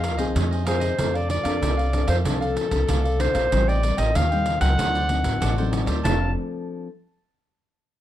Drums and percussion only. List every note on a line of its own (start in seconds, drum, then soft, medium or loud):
0.04 pandeiro medium
0.18 pandeiro medium
0.36 pandeiro medium
0.53 pandeiro soft
0.67 pandeiro medium
0.81 pandeiro medium
0.99 pandeiro medium
1.15 pandeiro soft
1.30 pandeiro medium
1.45 pandeiro medium
1.63 pandeiro medium
1.79 pandeiro soft
1.93 pandeiro medium
2.08 pandeiro medium
2.25 pandeiro medium
2.42 pandeiro soft
2.57 pandeiro medium
2.71 pandeiro medium
2.89 pandeiro medium
3.05 pandeiro soft
3.20 pandeiro medium
3.35 pandeiro medium
3.52 pandeiro medium
3.69 pandeiro soft
3.83 pandeiro medium
3.98 pandeiro medium
4.15 pandeiro medium
4.32 pandeiro soft
4.46 pandeiro medium
4.61 pandeiro medium
4.79 pandeiro medium
4.95 pandeiro soft
5.09 pandeiro medium
5.24 pandeiro medium
5.42 pandeiro medium
5.58 pandeiro soft
5.73 pandeiro medium
5.87 pandeiro medium
6.05 pandeiro loud